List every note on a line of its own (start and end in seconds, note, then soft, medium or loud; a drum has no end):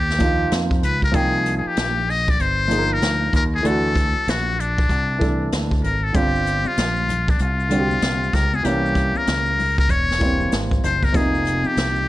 0.00 0.49 D#2 medium
0.00 0.58 G4 loud
0.10 snare soft
0.18 0.92 F3 medium
0.18 0.93 A#3 medium
0.18 0.93 D#4 medium
0.18 0.94 F4 medium
0.18 kick medium
0.18 closed hi-hat medium
0.51 0.82 F2 medium
0.51 snare medium
0.51 closed hi-hat medium
0.71 kick medium
0.83 1.13 C#2 medium
0.83 1.02 B4 medium
0.83 closed hi-hat medium
1.02 1.17 A#4 medium
1.02 kick medium
1.12 1.63 C2 loud
1.12 2.07 F3 medium
1.12 2.08 A#3 medium
1.12 2.08 D#4 medium
1.12 1.57 G#4 loud
1.12 kick loud
1.12 closed hi-hat medium
1.16 2.09 G5 medium
1.46 closed hi-hat medium
1.57 1.69 G#4 medium
1.66 2.12 G4 loud
1.66 muted fingered electric bass stroke soft
1.76 2.37 A#1 medium
1.76 snare loud
1.76 closed hi-hat medium
2.10 2.32 D#5 loud
2.10 open hi-hat soft
2.28 2.43 D5 medium
2.28 kick medium
2.39 2.99 G1 medium
2.39 2.95 C5 loud
2.39 closed hi-hat medium
2.68 3.42 F3 medium
2.68 3.43 A#3 medium
2.68 3.43 D#4 medium
2.68 closed hi-hat medium
2.72 2.80 G#4 medium
2.78 3.47 A#4 medium
2.93 3.34 A#4 loud
3.02 3.32 D2 medium
3.02 snare loud
3.02 closed hi-hat medium
3.33 3.63 D#2 medium
3.33 3.44 A#4 medium
3.33 kick medium
3.33 snare soft
3.33 closed hi-hat medium
3.55 3.68 G#4 medium
3.62 4.13 D2 loud
3.62 4.57 E3 medium
3.62 4.58 A3 medium
3.62 4.58 D4 medium
3.62 closed hi-hat medium
3.66 4.59 F#4 medium
3.66 4.31 A4 loud
3.96 kick medium
3.96 closed hi-hat medium
4.17 muted fingered electric bass stroke soft
4.27 4.86 A#1 medium
4.27 4.62 F#4 medium
4.27 snare loud
4.27 closed hi-hat medium
4.60 5.53 D4 medium
4.60 closed hi-hat medium
4.78 kick loud
4.89 5.49 C2 medium
4.89 kick medium
4.89 closed hi-hat medium
5.18 5.92 E3 medium
5.18 5.93 A3 medium
5.18 5.93 D4 medium
5.18 5.94 A4 medium
5.18 kick loud
5.18 closed hi-hat medium
5.52 5.82 D2 medium
5.52 snare loud
5.52 closed hi-hat medium
5.71 kick medium
5.84 6.13 G#1 medium
5.84 6.05 A#4 medium
5.84 closed hi-hat medium
6.04 6.17 A4 medium
6.13 6.63 G1 medium
6.13 7.07 D3 medium
6.13 7.08 G3 medium
6.13 7.08 C4 medium
6.13 7.09 F4 medium
6.13 6.69 G4 medium
6.13 kick loud
6.13 closed hi-hat medium
6.13 shaker medium
6.35 shaker soft
6.46 closed hi-hat medium
6.46 shaker soft
6.65 7.32 F4 medium
6.65 high conga medium
6.65 shaker soft
6.77 7.37 A#1 medium
6.77 snare loud
6.77 closed hi-hat medium
6.77 shaker medium
6.96 shaker soft
7.09 closed hi-hat medium
7.09 low conga medium
7.09 shaker soft
7.28 7.40 D4 medium
7.28 kick medium
7.28 high conga soft
7.28 shaker soft
7.39 7.99 C2 medium
7.39 8.36 F4 medium
7.39 closed hi-hat medium
7.39 shaker medium
7.60 shaker soft
7.69 8.42 D3 medium
7.69 8.43 G3 medium
7.69 8.44 C4 medium
7.69 7.80 F#4 medium
7.69 closed hi-hat medium
7.69 shaker soft
7.80 8.48 G4 medium
7.91 high conga medium
7.91 shaker soft
8.02 8.32 C2 medium
8.02 snare loud
8.02 closed hi-hat medium
8.02 shaker medium
8.24 shaker soft
8.33 8.63 C#2 medium
8.33 8.57 A#4 medium
8.33 kick medium
8.33 snare soft
8.33 closed hi-hat medium
8.33 low conga medium
8.33 shaker soft
8.54 8.67 G#4 medium
8.54 high conga medium
8.54 shaker soft
8.63 9.13 C2 medium
8.63 9.58 E3 medium
8.63 9.58 G3 medium
8.63 9.59 A#3 medium
8.63 9.59 C#4 medium
8.63 9.19 G4 medium
8.63 closed hi-hat medium
8.63 shaker medium
8.86 shaker soft
8.95 kick medium
8.95 closed hi-hat medium
8.95 shaker soft
9.15 9.79 A#4 loud
9.15 muted fingered electric bass stroke soft
9.15 high conga medium
9.15 shaker soft
9.27 9.87 C#2 medium
9.27 snare loud
9.27 closed hi-hat medium
9.27 shaker medium
9.46 shaker soft
9.59 open hi-hat soft
9.59 low conga medium
9.59 shaker soft
9.78 9.92 A#4 loud
9.78 kick medium
9.78 high conga soft
9.78 shaker soft
9.89 10.49 E1 medium
9.89 10.58 C#5 loud
9.89 kick medium
9.89 closed hi-hat medium
9.89 shaker medium
10.10 snare soft
10.10 shaker soft
10.19 10.92 E3 medium
10.19 10.93 G3 medium
10.19 10.93 A#3 medium
10.19 10.94 C4 medium
10.19 kick medium
10.19 closed hi-hat medium
10.19 shaker soft
10.41 high conga medium
10.41 shaker soft
10.51 10.82 G#1 medium
10.51 snare loud
10.51 closed hi-hat medium
10.51 shaker medium
10.71 kick medium
10.71 shaker soft
10.84 11.13 F#1 medium
10.84 11.06 C5 medium
10.84 closed hi-hat medium
10.84 low conga medium
10.84 shaker soft
11.03 11.18 A#4 loud
11.03 kick medium
11.03 high conga medium
11.03 shaker soft
11.12 11.63 F1 loud
11.12 12.07 C3 medium
11.12 12.08 F3 medium
11.12 12.08 A#3 medium
11.12 12.08 D#4 medium
11.12 11.68 G#4 medium
11.12 kick loud
11.12 closed hi-hat medium
11.12 shaker medium
11.35 shaker soft
11.45 closed hi-hat medium
11.45 shaker soft
11.64 12.08 G4 loud
11.64 muted fingered electric bass stroke soft
11.64 high conga medium
11.64 shaker soft
11.77 12.08 C2 medium
11.77 snare loud
11.77 closed hi-hat medium
11.77 shaker medium
11.95 shaker soft